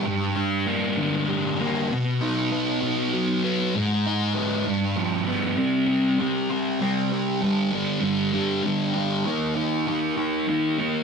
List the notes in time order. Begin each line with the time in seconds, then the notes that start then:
0.05 G2
0.35 D4
0.66 A#3
0.98 D3
1.28 G3
1.60 A#3
1.91 B2
2.21 D#4
2.51 B3
2.82 B2
3.13 F#3
3.44 B3
3.74 G#2
4.07 D#4
4.35 B3
4.66 G2
4.97 F3
5.27 B3
5.57 C3 G3 C4
5.87 G3 C4
6.19 C3 G3 C4
6.50 G3 C4
6.80 C3 G3 C4
7.12 G3 C4
7.42 G2 D3 G3
7.73 D3 G3
8.01 G2 D3 G3
8.32 D3 G3
8.63 G2 D3 G3
8.94 D3 G3
9.25 D#3 A#3 D#4
9.55 A#3 D#4
9.87 D#3 A#3 D#4
10.17 A#3 D#4
10.47 D#3 A#3 D#4
10.78 A#3 D#4